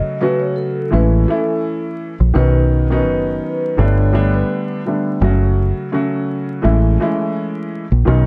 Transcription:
Already playing: grand piano C#3 F#3 A3 C#4 F#4, vibraphone D#5
0.20 grand piano C#3 F#3 A3 C#4 F#4, vibraphone B4
0.39 vibraphone C#5
0.56 vibraphone A4
0.91 fingered electric bass A1, grand piano E3 G#3 A3 C#4 E4, vibraphone B4
1.28 grand piano E3 A3 C#4 E4, vibraphone A4
2.20 fingered electric bass A#1
2.34 fingered electric bass B1, grand piano D#3 F#3 B3 C#4 D#4, vibraphone B4
2.90 grand piano D#3 F#3 B3 C#4 D#4, vibraphone B4
3.07 fingered electric bass F#1
3.77 fingered electric bass G1, grand piano D3 G3 A3 B3 D4, vibraphone C#5
4.13 grand piano D3 G3 A3 B3 D4
4.34 vibraphone B4
4.86 grand piano D3 G3 A3 B3 D4
5.22 fingered electric bass F#1, grand piano C#3 F#3 A3 C#4 F#4
5.92 grand piano C#3 F#3 A3 C#4 F#4
6.62 fingered electric bass A1, grand piano E3 G#3 A3 C#4 E4
7.00 grand piano E3 G#3 A3 C#4 E4
7.92 fingered electric bass A#1
8.05 fingered electric bass B1, grand piano D#3 F#3 B3 C#4 D#4

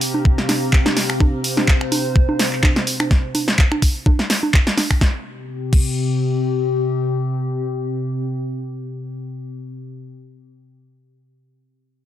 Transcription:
Already playing: ambient pad C3 C4 G4 F5 A#5
0.01 open hi-hat
0.14 high conga
0.25 kick
0.38 snare
0.49 snare, open hi-hat, high conga
0.73 kick, clap
0.86 snare, high conga
0.97 snare, open hi-hat
1.10 finger snap
1.20 ambient pad C5, kick, high conga
1.44 open hi-hat
1.57 snare, high conga
1.68 kick, clap
1.81 finger snap
1.92 open hi-hat, high conga
2.16 kick
2.29 high conga
2.39 snare, open hi-hat
2.53 clap
2.63 kick, clap, high conga
2.76 snare
2.87 open hi-hat
3.00 finger snap, high conga
3.11 kick, snare
3.35 open hi-hat, high conga
3.48 snare
3.58 kick, clap
3.72 finger snap, high conga
3.82 kick, open hi-hat
4.06 kick, high conga
4.19 snare
4.30 snare, open hi-hat
4.43 high conga
4.54 kick, clap
4.67 snare
4.78 snare, open hi-hat, high conga
4.91 finger snap, kick
5.01 ambient pad C3 C4 G4, kick, snare
5.73 kick, crash

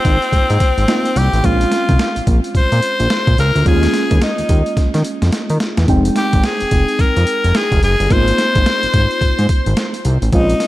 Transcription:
Already playing: fm electric piano A#3 C4 D#4 F4, tenor saxophone C4
0.05 analog synth bass G#1, kick, closed hi-hat
0.22 closed hi-hat
0.32 analog synth bass G#2, kick, closed hi-hat
0.50 analog synth bass G#2, closed hi-hat
0.60 kick, closed hi-hat
0.78 analog synth bass G#1, closed hi-hat
0.88 fm electric piano A#3 C4 D#4 F4, snare, closed hi-hat
1.05 closed hi-hat
1.16 analog synth bass C2, tenor saxophone G4, closed hi-hat
1.33 analog synth bass A1, closed hi-hat
1.43 analog synth bass A#1, fm electric piano G#3 C4 C#4 F4, tenor saxophone F4, kick, closed hi-hat
1.61 closed hi-hat
1.71 snare, closed hi-hat
1.89 analog synth bass C2, kick, closed hi-hat
1.99 snare, closed hi-hat
2.16 analog synth bass A#1, closed hi-hat
2.27 analog synth bass A#1, kick, closed hi-hat
2.44 closed hi-hat
2.55 analog synth bass A#2, tenor saxophone C5, kick, closed hi-hat
2.72 analog synth bass A#2, closed hi-hat
2.82 closed hi-hat
3.00 analog synth bass A#1, closed hi-hat
3.10 snare, closed hi-hat
3.27 analog synth bass A#1, kick, closed hi-hat
3.38 analog synth bass C#2, tenor saxophone A#4, closed hi-hat
3.56 analog synth bass D2, closed hi-hat
3.65 analog synth bass D#2, fm electric piano G#3 A#3 C#4 F4, tenor saxophone G#4, kick, closed hi-hat
3.83 snare, closed hi-hat
3.93 snare, closed hi-hat
4.11 analog synth bass D#2, kick, closed hi-hat
4.22 tenor saxophone D#4, snare, closed hi-hat
4.38 analog synth bass D#2, closed hi-hat
4.49 analog synth bass D#2, kick, closed hi-hat
4.66 closed hi-hat
4.77 analog synth bass D#3, kick, snare, closed hi-hat
4.94 analog synth bass D#3, snare, closed hi-hat
5.04 closed hi-hat
5.22 analog synth bass F2, snare, closed hi-hat
5.32 snare, closed hi-hat
5.50 analog synth bass D#3, closed hi-hat
5.60 snare, closed hi-hat
5.77 analog synth bass E2, snare, closed hi-hat
5.87 analog synth bass F1, fm electric piano G#3 C4 D#4 G5, kick, closed hi-hat
6.05 closed hi-hat
6.16 tenor saxophone G4, snare, closed hi-hat
6.33 analog synth bass G#1, kick, closed hi-hat
6.44 tenor saxophone G#4, snare, closed hi-hat
6.60 analog synth bass F1, closed hi-hat
6.71 analog synth bass F1, kick, closed hi-hat
6.88 closed hi-hat
6.99 analog synth bass F2, tenor saxophone A#4, kick, closed hi-hat
7.17 analog synth bass F2, closed hi-hat
7.27 closed hi-hat
7.44 analog synth bass F1, closed hi-hat
7.55 tenor saxophone G#4, snare, closed hi-hat
7.72 analog synth bass F1, kick, closed hi-hat
7.83 analog synth bass F#1, tenor saxophone G#4, closed hi-hat
8.00 analog synth bass G1, closed hi-hat
8.09 analog synth bass G#1, fm electric piano A#3 B3 D#4 F4, tenor saxophone C5, kick, closed hi-hat
8.17 fm electric piano C4
8.28 closed hi-hat
8.38 snare, closed hi-hat
8.55 analog synth bass G#1, kick, closed hi-hat
8.66 snare, closed hi-hat
8.83 analog synth bass G#1, closed hi-hat
8.94 analog synth bass G#1, kick, closed hi-hat
9.11 closed hi-hat
9.21 analog synth bass G#2, kick, closed hi-hat
9.39 analog synth bass G#2, closed hi-hat
9.49 kick, closed hi-hat
9.66 analog synth bass G#1, closed hi-hat
9.77 snare, closed hi-hat
9.94 closed hi-hat
10.05 analog synth bass C2, closed hi-hat
10.22 analog synth bass A1, closed hi-hat
10.32 analog synth bass A#1, fm electric piano G#3 C4 C#4 F4, tenor saxophone D#4, kick, closed hi-hat
10.50 closed hi-hat
10.60 snare, closed hi-hat

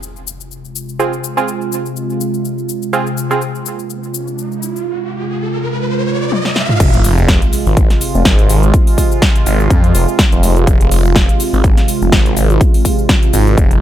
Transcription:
Already playing: analog synth pad C3 G#3 F4, impact
0.03 shaker
0.16 shaker
0.27 shaker
0.41 shaker
0.51 shaker
0.65 shaker
0.75 shaker
0.89 shaker
0.99 synth stab C4 F4 G#4, shaker
1.13 shaker
1.24 shaker
1.37 synth stab C4 F4 G#4, shaker
1.48 shaker
1.61 shaker
1.72 shaker
1.86 shaker
1.96 shaker
2.10 shaker
2.21 shaker
2.34 shaker
2.45 shaker
2.58 shaker
2.69 shaker
2.82 shaker
2.93 synth stab C4 F4 G#4, riser, shaker
3.07 shaker
3.17 shaker
3.31 synth stab C4 F4 G#4, shaker
3.42 shaker
3.55 shaker
3.66 shaker
3.79 shaker
3.90 shaker
4.03 shaker
4.14 shaker
4.28 shaker
4.38 shaker
4.52 shaker
4.63 shaker
4.76 shaker
6.32 high tom
6.45 snare
6.56 snare
6.69 mid tom
6.80 detuned saw bass F1, analog synth pad C3 G#3 F4, kick, closed hi-hat, crash, sub drop, shaker
6.94 detuned saw bass F1, closed hi-hat, shaker
7.04 open hi-hat, shaker
7.18 shaker
7.28 kick, snare, closed hi-hat, shaker
7.42 closed hi-hat, shaker
7.53 open hi-hat, shaker
7.66 detuned saw bass G#1, shaker
7.77 kick, closed hi-hat, shaker
7.90 snare, closed hi-hat, shaker
8.01 open hi-hat, shaker
8.15 detuned saw bass F1, shaker
8.25 detuned saw bass G#1, kick, snare, closed hi-hat, shaker
8.39 closed hi-hat, shaker
8.49 open hi-hat, shaker
8.63 closed hi-hat, shaker
8.74 kick, closed hi-hat, shaker
8.87 open hi-hat, shaker
8.98 kick, open hi-hat, shaker
9.12 shaker
9.22 kick, snare, closed hi-hat, shaker
9.36 closed hi-hat, shaker
9.46 detuned saw bass G#1, open hi-hat, shaker
9.60 shaker
9.70 detuned saw bass F2, kick, closed hi-hat, shaker
9.84 closed hi-hat, shaker
9.95 detuned saw bass F1, open hi-hat, shaker
10.08 shaker
10.19 kick, snare, closed hi-hat, shaker
10.32 detuned saw bass F1, closed hi-hat, shaker
10.43 open hi-hat, shaker
10.57 closed hi-hat, shaker
10.67 detuned saw bass F1, kick, closed hi-hat, shaker
10.81 detuned saw bass F1, closed hi-hat, shaker
10.91 open hi-hat, shaker
11.05 shaker
11.16 kick, snare, closed hi-hat, shaker
11.29 closed hi-hat, shaker
11.40 open hi-hat, shaker
11.53 detuned saw bass G#1, shaker
11.64 kick, closed hi-hat, shaker
11.77 snare, closed hi-hat, shaker
11.88 open hi-hat, shaker
12.02 detuned saw bass F1, shaker
12.12 detuned saw bass G#1, kick, snare, closed hi-hat, shaker
12.26 closed hi-hat, shaker
12.37 open hi-hat, shaker
12.50 closed hi-hat, shaker
12.61 kick, closed hi-hat, shaker
12.74 open hi-hat, shaker
12.85 kick, open hi-hat, shaker
12.99 shaker
13.09 kick, snare, closed hi-hat, shaker
13.23 closed hi-hat, shaker
13.33 detuned saw bass G#1, open hi-hat, shaker
13.47 shaker
13.58 detuned saw bass F1, kick, closed hi-hat, shaker
13.71 closed hi-hat, shaker

